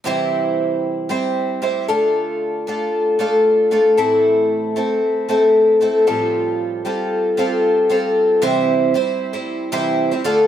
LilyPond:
\new Staff \with { instrumentName = "Twelve-string acoustic guitar" } { \time 4/4 \key c \major \tempo 4 = 115 <c e g c' e' c''>2 <g c' e' c''>4 <g c' e' c''>8 <d a d' f' a'>8~ | <d a d' f' a'>4 <a d' f' a'>4 <a d' f' a'>4 <a d' f' a'>8 <a, e a c' e' a'>8~ | <a, e a c' e' a'>4 <a c' e' a'>4 <a c' e' a'>4 <a c' e' a'>8 <a, f g c' f' a'>8~ | <a, f g c' f' a'>4 <g c' f' a'>4 <g c' f' a'>4 <g c' f' a'>4 |
<c e g c' e' c''>4 <g c' e' c''>8. <g c' e' c''>8. <c e g c' e' c''>8. <g c' e' c''>16 <d a d' f' a'>8 | }